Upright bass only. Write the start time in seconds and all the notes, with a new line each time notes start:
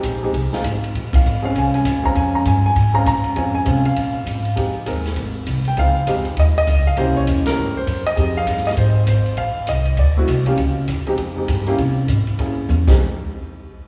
0.03 A#1
0.33 C2
0.52 muted upright bass stroke
0.64 G#1
0.94 A#1
1.24 G#1
1.55 C2
1.85 D#2
2.15 F2
2.45 G2
2.76 G#2
3.06 A#2
3.25 muted upright bass stroke
3.35 F2
3.66 C3
3.96 A#2
4.26 G#2
4.57 F2
4.87 D#2
5.16 G#1
5.46 C2
5.77 C#2
6.06 F2
6.37 D#2
6.67 C#2
6.97 C2
7.27 E2
7.46 muted upright bass stroke
7.58 G2
7.76 muted upright bass stroke
7.87 F#2
8.17 F2
8.47 G2
8.77 G#2
9.06 G#1
9.37 A1
9.56 muted upright bass stroke
9.67 C2
9.97 D2
10.27 C2
10.58 C#2
10.88 D#2
11.08 muted upright bass stroke
11.18 F2
11.48 G2
11.78 C3
12.08 G#2
12.28 muted upright bass stroke
12.38 F#2
12.69 E2
12.88 F1